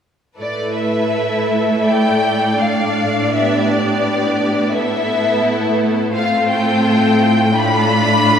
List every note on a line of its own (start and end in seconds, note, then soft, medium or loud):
0.38 6.10 A2 soft
0.38 3.28 A3 soft
0.38 2.55 E4 soft
0.38 3.27 A4 soft
0.38 1.82 B4 soft
0.38 0.74 D5 soft
0.78 1.87 E5 soft
1.85 4.72 D5 soft
1.85 2.59 G5 soft
2.59 4.72 D4 soft
2.59 3.32 F5 soft
3.32 4.73 B3 soft
3.32 4.70 G4 soft
3.32 3.67 E5 soft
3.67 4.72 D5 soft
4.72 6.14 B3 soft
4.72 6.14 E4 soft
4.72 6.11 A4 soft
4.72 5.78 E5 soft
5.44 6.14 A3 soft
6.14 8.39 A2 soft
6.14 7.52 A3 soft
6.14 7.52 C4 soft
6.14 7.52 F4 soft
6.14 7.52 A4 soft
6.14 6.47 F5 medium
6.51 7.54 G5 medium
7.56 8.39 A3 soft
7.56 8.39 D4 soft
7.56 8.39 F4 soft
7.56 8.39 A4 soft
7.56 8.39 B5 medium